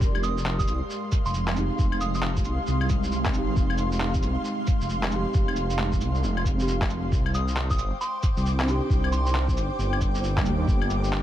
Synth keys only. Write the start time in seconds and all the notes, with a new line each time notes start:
1.52 G#3 C4
1.58 D#4 G4
3.30 G#3 C4
3.36 D#4 G4
5.07 G#3 C4
5.13 D#4 G4
6.54 G#3 C4
6.59 D#4 G4
8.63 C4 D4
8.68 D#4 G4
10.41 G3 A#3
10.46 D4 G4